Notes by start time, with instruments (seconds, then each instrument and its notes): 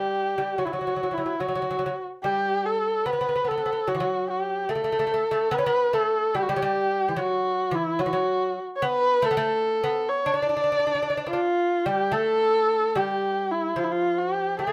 Already playing: lute G3, kamancheh G4
0.38 lute G3
0.58 lute F#3, kamancheh F#4
0.65 lute F#3, kamancheh E4
0.72 lute F#3, kamancheh F#4
0.81 lute F#3
0.87 lute F#3
0.96 lute F#3
1.03 lute F#3
1.11 lute F#3, kamancheh E4
1.18 lute F#3
1.26 lute F#3
1.40 lute F#3, kamancheh F#4
1.48 lute F#3
1.55 lute F#3
1.71 lute F#3
1.79 lute F#3
1.86 lute F#3
2.24 lute G3, kamancheh G4
2.66 kamancheh A4
3.06 lute B3, kamancheh B4
3.13 lute B3
3.21 lute B3
3.29 lute B3
3.36 lute B3
3.45 lute B3, kamancheh A4
3.51 lute B3
3.58 lute B3
3.66 lute B3
3.73 lute B3
3.87 lute F#3, kamancheh F#4
3.95 lute E3
4.00 lute F#3
4.30 kamancheh G4
4.69 lute A3, kamancheh A4
4.75 lute A3
4.84 lute A3
4.92 lute A3
4.99 lute A3
5.07 lute A3
5.14 lute A3
5.31 lute A3
5.51 lute B3, kamancheh B4
5.58 lute C#4
5.66 lute B3
5.93 lute A3, kamancheh A4
6.35 lute G3, kamancheh G4
6.43 kamancheh F#4
6.49 lute G3, kamancheh G4
6.56 lute F#3
6.62 lute G3
7.09 lute E3
7.17 lute F#3, kamancheh F#4
7.71 lute E3, kamancheh E4
7.99 lute F#3, kamancheh F#4
8.06 lute E3
8.13 lute F#3
8.76 kamancheh C#5
8.82 lute B3, kamancheh B4
9.22 lute A3, kamancheh A4
9.31 lute B3
9.37 lute A3
9.84 lute B3
10.09 kamancheh C#5
10.26 lute D4
10.30 lute D4, kamancheh D5
10.42 lute D4
10.49 lute D4
10.57 lute D4
10.64 lute D4
10.72 lute D4
10.79 lute D4
10.87 lute D4
10.95 lute D4
11.02 lute D4
11.10 lute D4
11.17 lute D4
11.26 lute D4, kamancheh F4
11.33 lute D4
11.85 lute G3, kamancheh G4
12.12 lute A3, kamancheh A4
12.95 lute G3, kamancheh G4
13.51 kamancheh E4
13.76 lute F3, kamancheh F4
13.84 kamancheh E4
13.92 kamancheh F4
14.18 kamancheh G4
14.59 lute A3, kamancheh A4
14.67 lute A3